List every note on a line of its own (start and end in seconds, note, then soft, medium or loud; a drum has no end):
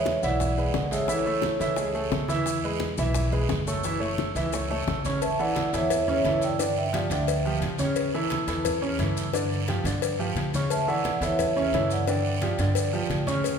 0.00 0.17 E2 medium
0.00 0.17 G#3 medium
0.00 0.17 G#4 medium
0.00 0.17 B4 medium
0.00 0.21 C#5 medium
0.00 0.20 E5 loud
0.06 high bongo medium
0.06 high conga medium
0.06 short guiro medium
0.06 maracas soft
0.23 0.71 B1 medium
0.23 0.51 E3 medium
0.23 0.52 E4 medium
0.23 0.88 D5 medium
0.23 0.52 E5 medium
0.23 0.94 F#5 loud
0.23 high bongo soft
0.23 high conga soft
0.23 short guiro medium
0.23 maracas medium
0.40 high bongo medium
0.40 high conga soft
0.40 low conga medium
0.40 long guiro medium
0.40 maracas medium
0.57 0.86 G#3 medium
0.57 0.86 G#4 medium
0.57 0.86 B4 medium
0.57 high bongo soft
0.57 high conga soft
0.57 maracas soft
0.74 1.55 A1 medium
0.74 high bongo medium
0.74 low bongo medium
0.74 high conga medium
0.74 short guiro medium
0.74 maracas soft
0.91 1.06 G#3 medium
0.91 1.06 G#4 medium
0.91 1.06 A4 medium
0.91 1.08 C#5 medium
0.91 1.08 E5 medium
0.91 high bongo soft
0.91 high conga soft
0.91 short guiro medium
0.91 maracas medium
1.08 1.23 E3 medium
1.08 1.23 E4 medium
1.08 2.09 A4 medium
1.08 2.08 C#5 medium
1.08 1.23 E5 medium
1.08 high bongo medium
1.08 high conga soft
1.08 long guiro medium
1.08 maracas medium
1.26 1.54 A3 medium
1.26 1.54 E4 medium
1.26 1.55 A4 medium
1.26 high conga soft
1.26 maracas soft
1.42 high bongo medium
1.42 high conga medium
1.42 short guiro medium
1.42 maracas soft
1.60 2.09 C#2 medium
1.60 1.74 E3 medium
1.60 1.75 E4 medium
1.60 1.75 E5 medium
1.60 high bongo soft
1.60 high conga soft
1.60 short guiro medium
1.60 maracas medium
1.76 1.91 G#3 medium
1.76 1.92 G#4 medium
1.76 1.92 A4 medium
1.76 high bongo medium
1.76 high conga soft
1.76 long guiro medium
1.76 maracas medium
1.94 2.23 A3 medium
1.94 2.23 G#4 medium
1.94 2.23 A4 medium
1.94 high bongo soft
1.94 high conga soft
1.94 maracas soft
2.12 2.92 E2 loud
2.12 high bongo medium
2.12 low bongo medium
2.12 high conga medium
2.12 short guiro medium
2.12 maracas soft
2.28 2.57 E3 medium
2.28 2.57 E4 medium
2.28 2.58 E5 medium
2.28 high conga medium
2.28 short guiro medium
2.28 maracas medium
2.46 high bongo medium
2.46 high conga soft
2.46 long guiro medium
2.46 maracas medium
2.63 2.92 G#3 medium
2.63 2.93 G#4 medium
2.63 2.93 B4 medium
2.63 high conga soft
2.63 maracas soft
2.80 high bongo medium
2.80 high conga medium
2.80 short guiro medium
2.80 maracas soft
2.97 3.46 B1 medium
2.97 3.27 E3 medium
2.97 3.27 E4 medium
2.97 3.27 E5 medium
2.97 high bongo soft
2.97 high conga soft
2.97 short guiro medium
2.97 maracas medium
3.15 high bongo medium
3.15 high conga soft
3.15 low conga medium
3.15 long guiro medium
3.15 maracas medium
3.32 3.61 G#3 medium
3.32 3.61 G#4 medium
3.32 3.61 B4 medium
3.32 high bongo soft
3.32 high conga soft
3.32 low conga medium
3.32 maracas soft
3.49 4.30 F#1 medium
3.49 high bongo medium
3.49 low bongo medium
3.49 high conga medium
3.49 short guiro medium
3.49 maracas soft
3.67 3.81 A3 medium
3.67 3.81 A4 medium
3.67 3.82 C#5 medium
3.67 high bongo soft
3.67 high conga soft
3.67 short guiro medium
3.67 maracas medium
3.84 3.98 E3 medium
3.84 3.99 E4 medium
3.84 3.99 E5 medium
3.84 high bongo medium
3.84 high conga soft
3.84 long guiro medium
3.84 maracas medium
4.00 4.29 A3 medium
4.00 4.29 A4 medium
4.00 4.29 C#5 medium
4.00 high conga soft
4.00 maracas soft
4.18 high bongo medium
4.18 high conga medium
4.18 short guiro medium
4.18 maracas soft
4.35 4.83 C#2 medium
4.35 4.50 E3 medium
4.35 4.50 E4 medium
4.35 4.50 E5 medium
4.35 high bongo soft
4.35 high conga soft
4.35 short guiro medium
4.35 maracas medium
4.53 4.67 A3 medium
4.53 4.67 A4 medium
4.53 4.67 C#5 medium
4.53 high bongo medium
4.53 high conga soft
4.53 long guiro medium
4.53 maracas medium
4.70 4.98 A3 medium
4.70 4.99 A4 medium
4.70 4.99 C#5 medium
4.70 high bongo soft
4.70 high conga soft
4.70 maracas soft
4.87 5.68 A1 medium
4.87 high bongo medium
4.87 low bongo medium
4.87 high conga medium
4.87 short guiro medium
4.87 maracas soft
5.05 5.19 C#3 medium
5.05 5.19 C#4 medium
5.05 5.19 C#5 medium
5.05 high conga medium
5.05 short guiro medium
5.05 maracas medium
5.21 5.38 E5 medium
5.21 5.38 A5 loud
5.21 cowbell medium
5.21 high conga soft
5.21 long guiro medium
5.21 maracas loud
5.39 5.67 E3 medium
5.39 5.68 E4 medium
5.39 5.68 A4 medium
5.39 5.72 D5 medium
5.39 5.71 F#5 loud
5.39 high conga soft
5.39 maracas soft
5.56 cowbell medium
5.56 high conga loud
5.56 short guiro medium
5.56 maracas soft
5.73 6.21 E2 medium
5.73 6.02 E3 medium
5.73 6.02 E4 medium
5.73 6.02 A4 medium
5.73 6.06 C#5 medium
5.73 6.06 E5 loud
5.73 cowbell medium
5.73 high conga soft
5.73 short guiro medium
5.73 maracas medium
5.90 cowbell loud
5.90 high conga soft
5.90 low conga medium
5.90 long guiro medium
5.90 maracas medium
6.08 6.22 C#3 medium
6.08 6.22 C#4 medium
6.08 6.22 C#5 medium
6.08 6.41 C#5 medium
6.08 6.41 E5 medium
6.08 high conga soft
6.08 low conga medium
6.08 maracas soft
6.24 7.05 G2 medium
6.24 6.53 E3 medium
6.24 6.53 E4 medium
6.24 6.53 A4 medium
6.24 cowbell medium
6.24 high conga medium
6.24 short guiro medium
6.24 maracas soft
6.41 6.76 D5 medium
6.41 6.77 G5 medium
6.41 high conga soft
6.41 short guiro medium
6.41 maracas medium
6.58 6.87 D3 medium
6.58 6.88 D4 medium
6.58 6.88 D5 medium
6.58 cowbell loud
6.58 high conga soft
6.58 long guiro medium
6.58 maracas loud
6.76 6.93 E5 medium
6.76 6.95 G5 medium
6.76 high conga soft
6.76 maracas soft
6.93 7.07 F3 medium
6.93 7.08 F4 medium
6.93 7.08 G4 medium
6.93 7.02 D5 medium
6.93 7.02 F5 medium
6.93 cowbell medium
6.93 high conga medium
6.93 short guiro medium
6.93 maracas soft
7.10 7.58 D2 loud
7.10 7.39 D3 medium
7.10 7.39 D4 medium
7.10 7.39 D5 medium
7.10 7.59 E5 medium
7.10 7.59 G5 medium
7.10 cowbell medium
7.10 high conga soft
7.10 short guiro medium
7.10 maracas medium
7.27 cowbell loud
7.27 high conga soft
7.27 long guiro medium
7.27 maracas medium
7.45 7.73 F3 medium
7.45 7.73 F4 medium
7.45 7.74 G4 medium
7.45 high conga soft
7.45 maracas soft
7.60 8.41 A1 medium
7.60 cowbell medium
7.60 high conga medium
7.60 short guiro medium
7.60 maracas soft
7.79 8.07 C#3 medium
7.79 8.07 C#4 medium
7.79 8.08 C#5 medium
7.79 high conga medium
7.79 short guiro medium
7.79 maracas medium
7.96 cowbell loud
7.96 high conga soft
7.96 long guiro medium
7.96 maracas medium
8.14 8.42 E3 medium
8.14 8.42 E4 medium
8.14 8.43 A4 medium
8.14 high conga soft
8.14 maracas soft
8.30 cowbell medium
8.30 high conga medium
8.30 short guiro medium
8.30 maracas soft
8.47 8.95 E2 medium
8.47 8.76 E3 medium
8.47 8.76 E4 medium
8.47 8.76 A4 medium
8.47 cowbell medium
8.47 high conga soft
8.47 short guiro medium
8.47 maracas medium
8.65 cowbell loud
8.65 high conga soft
8.65 low conga medium
8.65 long guiro medium
8.65 maracas medium
8.81 8.96 C#3 medium
8.81 8.96 C#4 medium
8.81 8.96 C#5 medium
8.81 high conga soft
8.81 maracas soft
8.99 9.79 G2 loud
8.99 9.27 E3 medium
8.99 9.27 E4 medium
8.99 9.28 A4 medium
8.99 cowbell medium
8.99 high conga loud
8.99 short guiro medium
8.99 maracas soft
9.17 high conga soft
9.17 short guiro medium
9.17 maracas medium
9.33 9.62 D3 medium
9.33 9.62 D4 medium
9.33 9.62 D5 medium
9.33 cowbell loud
9.33 high conga soft
9.33 long guiro medium
9.33 maracas medium
9.52 high conga soft
9.52 maracas soft
9.68 9.82 F3 medium
9.68 9.82 F4 medium
9.68 9.82 G4 medium
9.68 cowbell medium
9.68 high conga medium
9.68 short guiro medium
9.68 maracas soft
9.84 10.32 G2 loud
9.84 10.13 D3 medium
9.84 10.13 D4 medium
9.84 10.14 D5 medium
9.84 cowbell medium
9.84 high conga soft
9.84 short guiro medium
9.84 maracas medium
10.02 cowbell loud
10.02 high conga soft
10.02 long guiro medium
10.02 maracas medium
10.19 10.48 F3 medium
10.19 10.48 F4 medium
10.19 10.48 G4 medium
10.19 high conga soft
10.19 maracas soft
10.35 11.16 A2 medium
10.35 cowbell medium
10.35 high conga loud
10.35 short guiro medium
10.35 maracas soft
10.54 10.82 C#3 medium
10.54 10.83 C#4 medium
10.54 10.83 C#5 medium
10.54 high conga medium
10.54 short guiro medium
10.54 maracas medium
10.70 10.87 E5 medium
10.70 10.87 A5 medium
10.70 cowbell medium
10.70 high conga soft
10.70 long guiro medium
10.70 maracas medium
10.88 11.16 E3 medium
10.88 11.16 E4 medium
10.88 11.16 A4 medium
10.88 11.20 D5 medium
10.88 11.20 F#5 loud
10.88 high conga soft
10.88 maracas soft
11.05 cowbell medium
11.05 high conga medium
11.05 short guiro medium
11.05 maracas soft
11.21 11.69 E2 medium
11.21 11.50 E3 medium
11.21 11.50 E4 medium
11.21 11.51 A4 medium
11.21 11.55 C#5 medium
11.21 11.55 E5 medium
11.21 cowbell medium
11.21 high conga soft
11.21 short guiro medium
11.21 maracas medium
11.39 cowbell loud
11.39 high conga soft
11.39 low conga medium
11.39 long guiro medium
11.39 maracas medium
11.56 11.70 C#3 medium
11.56 11.71 C#4 medium
11.56 11.71 C#5 medium
11.56 11.89 C#5 medium
11.56 11.88 E5 medium
11.56 high conga soft
11.56 maracas soft
11.72 12.53 G2 medium
11.72 12.02 E3 medium
11.72 12.02 E4 medium
11.72 12.02 A4 medium
11.72 cowbell medium
11.72 high conga medium
11.72 short guiro medium
11.72 maracas soft
11.90 12.08 D5 medium
11.90 12.09 F#5 medium
11.90 high conga soft
11.90 short guiro medium
11.90 maracas medium
12.07 12.36 D3 medium
12.07 12.36 D4 medium
12.07 12.36 D5 medium
12.07 13.24 D5 medium
12.07 13.24 G5 medium
12.07 cowbell loud
12.07 high conga soft
12.07 long guiro medium
12.07 maracas medium
12.25 high conga soft
12.25 maracas soft
12.41 12.56 F3 medium
12.41 12.56 F4 medium
12.41 12.57 G4 medium
12.41 cowbell medium
12.41 high conga medium
12.41 short guiro medium
12.41 maracas soft
12.58 13.07 G2 medium
12.58 12.88 D3 medium
12.58 12.88 D4 medium
12.58 12.88 D5 medium
12.58 cowbell medium
12.58 high conga soft
12.58 short guiro medium
12.58 maracas medium
12.75 cowbell loud
12.75 high conga soft
12.75 long guiro medium
12.75 maracas medium
12.93 13.22 F3 medium
12.93 13.22 F4 medium
12.93 13.22 G4 medium
12.93 high conga soft
12.93 maracas soft
13.10 13.59 A2 medium
13.10 cowbell medium
13.10 high conga loud
13.10 short guiro medium
13.10 maracas soft
13.27 13.55 C#3 medium
13.27 13.56 C#4 loud
13.27 13.56 C#5 medium
13.27 high conga medium
13.27 short guiro medium
13.27 maracas medium
13.44 cowbell medium
13.44 high conga soft
13.44 long guiro medium
13.44 maracas medium